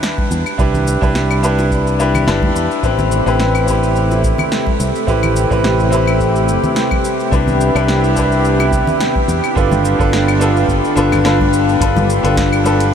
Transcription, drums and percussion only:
0.03 snare, shaker
0.18 kick, high conga
0.31 shaker
0.46 claves, shaker
0.59 kick, shaker
0.74 low conga, shaker
0.87 shaker
1.02 kick, shaker
1.15 snare, shaker
1.31 claves, shaker
1.44 shaker
1.59 high bongo, shaker
1.71 kick, shaker
1.87 shaker
2.00 shaker
2.14 low conga, claves, shaker
2.28 snare, shaker
2.42 kick, high conga
2.56 shaker
2.71 shaker
2.83 kick, shaker
2.99 low conga, shaker
3.12 shaker
3.27 shaker
3.40 snare, shaker
3.55 claves, shaker
3.68 kick, shaker
3.83 shaker
3.96 shaker
4.11 high bongo, shaker
4.24 kick, shaker
4.38 low conga, claves, shaker
4.52 snare, shaker
4.67 kick, high conga
4.80 shaker
4.95 shaker
5.08 kick, shaker
5.23 low conga, claves, shaker
5.36 shaker
5.51 kick, shaker
5.64 snare, shaker
5.80 shaker
5.92 shaker
6.07 claves, shaker
6.20 kick, shaker
6.36 shaker
6.48 shaker
6.64 low conga, shaker
6.76 snare, shaker
6.91 kick, high conga, claves
7.05 shaker
7.20 shaker
7.32 kick, shaker
7.48 low conga, shaker
7.61 shaker
7.76 claves, shaker
7.88 snare, shaker
8.04 shaker
8.16 kick, shaker
8.32 shaker
8.45 shaker
8.60 high bongo, claves, shaker
8.72 kick, shaker
8.87 low conga, shaker
9.01 snare, shaker
9.16 kick, high conga
9.29 shaker
9.44 claves, shaker
9.56 kick, shaker
9.71 high conga, low conga, shaker
9.85 shaker
10.00 kick, shaker
10.13 snare, shaker
10.28 claves, shaker
10.41 shaker
10.56 shaker
10.69 kick, shaker
10.84 shaker
10.97 high bongo, shaker
11.12 snare, low conga, claves, shaker
11.25 snare, shaker
11.40 kick, high conga
11.53 shaker
11.69 shaker
11.81 kick, closed hi-hat, shaker
11.96 high conga, low conga, shaker
12.10 shaker
12.25 closed hi-hat, shaker
12.37 kick, snare, closed hi-hat, shaker
12.53 claves, shaker
12.65 high conga, shaker
12.80 closed hi-hat, shaker

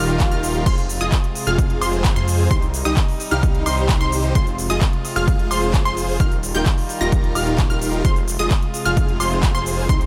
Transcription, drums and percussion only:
0.09 closed hi-hat, shaker
0.20 kick, clap, closed hi-hat, shaker
0.32 closed hi-hat, shaker
0.43 open hi-hat, shaker
0.55 closed hi-hat, shaker
0.66 kick, closed hi-hat, crash, shaker
0.78 closed hi-hat, shaker
0.89 open hi-hat, shaker
1.01 shaker
1.12 kick, clap, closed hi-hat, shaker
1.24 closed hi-hat
1.35 open hi-hat, shaker
1.47 closed hi-hat, shaker
1.58 kick, closed hi-hat, shaker
1.70 closed hi-hat
1.81 open hi-hat, high woodblock, shaker
1.93 closed hi-hat, shaker
2.04 kick, clap, closed hi-hat, shaker
2.16 closed hi-hat, shaker
2.28 open hi-hat, shaker
2.39 open hi-hat, shaker
2.51 kick, closed hi-hat, shaker
2.62 closed hi-hat, shaker
2.74 open hi-hat, shaker
2.85 closed hi-hat, shaker
2.97 kick, clap, closed hi-hat, shaker
3.08 open hi-hat
3.20 open hi-hat, shaker
3.31 closed hi-hat, shaker
3.43 kick, closed hi-hat, shaker
3.55 closed hi-hat
3.66 open hi-hat, high woodblock, shaker
3.78 closed hi-hat, shaker
3.89 kick, clap, closed hi-hat, shaker
4.01 closed hi-hat, shaker
4.12 open hi-hat, shaker
4.24 closed hi-hat, shaker
4.35 kick, closed hi-hat, shaker
4.47 closed hi-hat, shaker
4.58 open hi-hat, shaker
4.71 shaker
4.81 kick, clap, closed hi-hat, shaker
4.93 closed hi-hat
5.05 open hi-hat, shaker
5.17 shaker
5.28 kick, closed hi-hat, shaker
5.39 closed hi-hat
5.51 open hi-hat, high woodblock, shaker
5.62 closed hi-hat, shaker
5.74 kick, clap, closed hi-hat, shaker
5.86 closed hi-hat, shaker
5.97 open hi-hat, shaker
6.09 open hi-hat, shaker
6.20 kick, closed hi-hat, shaker
6.32 closed hi-hat, shaker
6.43 open hi-hat, shaker
6.55 closed hi-hat, shaker
6.66 kick, clap, closed hi-hat, shaker
6.78 open hi-hat, shaker
6.89 open hi-hat, shaker
7.01 shaker
7.12 kick, closed hi-hat, shaker
7.24 closed hi-hat
7.35 open hi-hat, high woodblock, shaker
7.47 closed hi-hat, shaker
7.58 kick, clap, closed hi-hat, shaker
7.70 closed hi-hat, shaker
7.82 open hi-hat, shaker
7.93 closed hi-hat, shaker
8.05 kick, closed hi-hat, shaker
8.16 closed hi-hat, shaker
8.28 open hi-hat, shaker
8.40 shaker
8.51 kick, clap, closed hi-hat, shaker
8.62 closed hi-hat
8.74 open hi-hat, shaker
8.85 closed hi-hat, shaker
8.97 kick, closed hi-hat, shaker
9.09 closed hi-hat
9.20 open hi-hat, high woodblock, shaker
9.32 closed hi-hat, shaker
9.43 kick, clap, closed hi-hat, shaker
9.55 closed hi-hat, shaker
9.66 open hi-hat, shaker
9.78 open hi-hat, shaker
9.89 kick, closed hi-hat, shaker
10.01 closed hi-hat, shaker

